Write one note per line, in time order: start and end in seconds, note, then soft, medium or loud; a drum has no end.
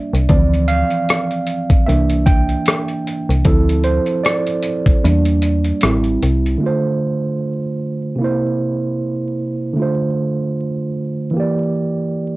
0.00 0.31 G3 soft
0.00 0.31 A#3 soft
0.00 0.31 D4 medium
0.00 0.29 D5 medium
0.00 0.30 E5 medium
0.13 0.28 C2 medium
0.13 closed hi-hat soft
0.29 0.84 D2 loud
0.29 1.84 E3 medium
0.29 1.83 F3 medium
0.29 1.84 C4 medium
0.29 0.70 D5 medium
0.29 kick loud
0.29 closed hi-hat medium
0.53 closed hi-hat soft
0.68 1.43 F5 loud
0.68 closed hi-hat medium
0.90 closed hi-hat soft
1.09 cross-stick loud
1.09 closed hi-hat medium
1.31 closed hi-hat soft
1.47 closed hi-hat medium
1.70 kick medium
1.70 closed hi-hat medium
1.86 2.57 C2 medium
1.86 3.41 E3 medium
1.86 3.41 A#3 medium
1.86 3.42 D4 medium
1.86 2.24 E5 medium
1.86 closed hi-hat medium
2.10 closed hi-hat soft
2.26 3.01 G5 medium
2.26 kick loud
2.26 closed hi-hat medium
2.49 closed hi-hat soft
2.66 cross-stick loud
2.66 closed hi-hat medium
2.88 closed hi-hat soft
3.07 closed hi-hat medium
3.29 3.44 C2 medium
3.29 closed hi-hat soft
3.45 3.99 D2 loud
3.45 4.60 F3 medium
3.45 4.60 C4 soft
3.45 4.61 E4 medium
3.45 3.86 A4 medium
3.45 kick loud
3.45 closed hi-hat medium
3.69 closed hi-hat soft
3.84 4.25 C5 medium
3.84 closed hi-hat medium
4.06 closed hi-hat soft
4.23 5.78 D5 medium
4.23 cross-stick loud
4.23 closed hi-hat medium
4.47 closed hi-hat soft
4.62 closed hi-hat medium
4.86 kick medium
4.86 closed hi-hat medium
5.04 5.72 E2 medium
5.04 5.78 G3 medium
5.04 5.79 A#3 soft
5.04 5.79 D4 medium
5.04 closed hi-hat medium
5.25 closed hi-hat soft
5.42 closed hi-hat medium
5.64 closed hi-hat soft
5.81 6.17 A1 loud
5.81 6.57 G3 medium
5.81 6.58 C4 medium
5.81 6.58 E4 medium
5.81 cross-stick loud
5.81 closed hi-hat medium
6.04 closed hi-hat soft
6.22 6.56 C2 loud
6.22 closed hi-hat medium
6.46 closed hi-hat soft
6.58 8.14 D3 medium
6.58 8.15 A3 medium
6.64 8.17 F4 medium
6.64 8.18 C5 medium
8.15 9.72 C3 medium
8.15 9.73 A#3 medium
8.21 9.75 E4 medium
8.21 9.76 C5 medium
9.73 11.30 D3 medium
9.73 11.31 A3 medium
9.79 11.33 F4 medium
9.79 11.34 C5 medium
11.31 12.37 E3 medium
11.31 12.37 A#3 medium
11.37 12.37 G4 medium
11.37 12.37 D5 medium